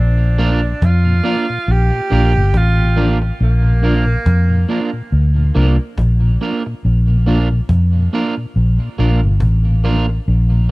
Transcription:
Already playing: fingered electric bass A#1
0.00 tenor saxophone D4
0.20 tonewheel organ A#2
0.38 tonewheel organ F3 A#3 D4, clean electric guitar A#3 D4 F4 A#4
0.64 tonewheel organ A#2
0.82 fingered electric bass F2, tenor saxophone F4, cajon bass, cajon slap
1.06 tonewheel organ A#2
1.24 tonewheel organ F3 A#3 D4, clean electric guitar A#3 D4 F4 A#4
1.50 tonewheel organ A#2, cajon slap
1.68 fingered electric bass A#1, tenor saxophone G4
1.92 tonewheel organ A#2
2.10 fingered electric bass A#1, tonewheel organ F3 A#3 D4, clean electric guitar A#3 D4 F4 A#4
2.34 fingered electric bass G1, tonewheel organ A#2
2.54 fingered electric bass A1, tenor saxophone F4, cajon bass, cajon slap
2.78 tonewheel organ A#2
2.96 tonewheel organ F3 A#3 D4, clean electric guitar A#3 D4 F4 A#4
3.22 muted clean electric guitar stroke, cajon slap
3.40 fingered electric bass A#1, tenor saxophone A#3, cajon slap
3.64 tonewheel organ A#2
3.82 tonewheel organ F3 A#3 D4, clean electric guitar A#3 D4 F4 A#4, cajon slap
4.06 tonewheel organ A#2
4.26 fingered electric bass F2, cajon bass, cajon slap
4.49 tonewheel organ A#2
4.68 tonewheel organ F3 A#3 D4, clean electric guitar A#3 D4 F4 A#4, cajon slap
4.93 tonewheel organ A#2, cajon slap
5.11 fingered electric bass D2, cajon slap
5.36 tonewheel organ A#2
5.55 fingered electric bass C2, tonewheel organ F3 A#3 D4, clean electric guitar A#3 D4 F4 A#4
5.78 cajon slap
5.98 fingered electric bass A#1, cajon bass, cajon slap
6.22 tonewheel organ A#2
6.40 tonewheel organ F3 A#3 D4, clean electric guitar A#3 D4 F4 A#4, cajon slap
6.66 tonewheel organ A#2, muted clean electric guitar stroke, cajon slap
6.83 fingered electric bass A#1, cajon slap
7.08 tonewheel organ A#2
7.26 tonewheel organ F3 A#3 D4, clean electric guitar A#3 D4 F4 A#4, cajon slap
7.51 tonewheel organ A#2, cajon slap
7.69 fingered electric bass F2, cajon bass, cajon slap
7.96 tonewheel organ A#2
8.13 tonewheel organ F3 A#3 D4, clean electric guitar A#3 D4 F4 A#4, cajon slap
8.36 tonewheel organ A#2, cajon slap
8.54 fingered electric bass A#1, cajon slap
8.80 tonewheel organ A#2
8.98 fingered electric bass A#1, tonewheel organ F3 A#3 D4, clean electric guitar A#3 D4 F4 A#4, cajon slap
9.22 fingered electric bass G1, tonewheel organ A#2, cajon slap
9.40 fingered electric bass A1, cajon bass, cajon slap
9.67 tonewheel organ A#2
9.84 tonewheel organ F3 A#3 D4, clean electric guitar A#3 D4 F4 A#4, cajon slap
10.09 muted clean electric guitar stroke, cajon slap
10.27 fingered electric bass A#1, cajon slap
10.52 tonewheel organ A#2

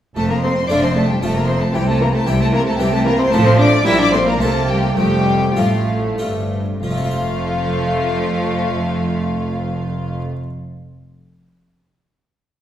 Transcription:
0.16 double bass section F1, cello section F2, harpsichord F2, viola section A3, cello A3, violin section A4 A5
0.30 cello A#3, violin section A#4 A#5
0.42 viola section A3, cello C4, violin section C5 C6
0.69 double bass section F1, cello section F2, harpsichord F2 A3 C4 F4, viola section A3, cello D4, violin section D5 D6
0.82 cello C4, violin section C5 C6
0.94 viola section A3, cello A3, violin section A4 A5
1.08 cello G3, violin section G4 G5
1.21 double bass section F1, cello section F2, harpsichord F2 A3 C4 F4, viola section A3, cello A3, violin section A4 A5
1.35 cello A#3, violin section A#4 A#5
1.48 viola section A3, cello C4, violin section C5 C6
1.61 cello A3, violin section A4 A5
1.74 double bass section C2, cello section C3, harpsichord C3, viola section E3, cello G3, violin section G4 G5
1.87 cello A3, violin section A4 A5
2.00 viola section E3, cello A#3, violin section A#4 A#5
2.13 cello A3, violin section A4 A5
2.26 double bass section C2, harpsichord C3 C4 E4, cello section C3, viola section E3, cello G3, violin section G4 G5
2.40 cello A3, violin section A4 A5
2.52 viola section E3, cello A#3, violin section A#4 A#5
2.66 cello A3, violin section A4 A5
2.78 double bass section C2, cello section C3, harpsichord C3 C4 E4, viola section E3, cello G3, violin section G4 G5
2.92 cello A3, violin section A4 A5
3.05 viola section E3, cello A#3, violin section A#4 A#5
3.19 cello C4, violin section C5 C6
3.31 double bass section A1, cello section A2, harpsichord A2 C4 F4, viola section F3, cello A3, violin section A4 A5
3.45 cello C4, violin section C5 C6
3.58 cello D4, violin section D5 D6
3.85 double bass section A#1, cello section A#2, harpsichord A#2 A#3 F4, viola section G3, cello E4, violin section E5 E6
3.98 cello D4, violin section D5 D6
4.12 viola section A3, cello C4, violin section C5 C6
4.26 cello A#3, violin section A#4 A#5
4.39 double bass section C2, cello section C3, harpsichord C3 A#3 E4, cello A3, viola section A#3, violin section A4 A5
4.67 cello G3, violin section G4 G5
4.96 double bass section F1, cello section F2, harpsichord F2, cello G3, viola section A3, violin section G4 G5
5.56 double bass section A1, cello section A2, harpsichord A2 A3 C4 F4, cello F3, viola section A3, violin section F4 F5
6.18 double bass section G1, cello section G2, harpsichord G2 A3 C4 F4
6.82 double bass section F1, cello section F2, cello F3, harpsichord F3, viola section A3, violin section F4 F5
6.90 harpsichord A3
6.97 harpsichord C4
7.05 harpsichord F4
7.11 harpsichord C5

